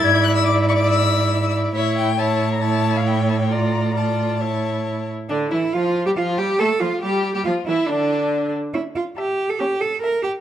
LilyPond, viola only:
\new Staff \with { instrumentName = "Viola" } { \clef bass \time 4/4 \key d \minor \tempo 4 = 139 e'1 | e'4 e'4 e'2 | f'4 f'4 e'4. r8 | d8 e8 f8. g16 f8 g8 a8 f8 |
g8. g16 f8 e8 d4. r8 | cis'4 r4 cis'4 r4 | }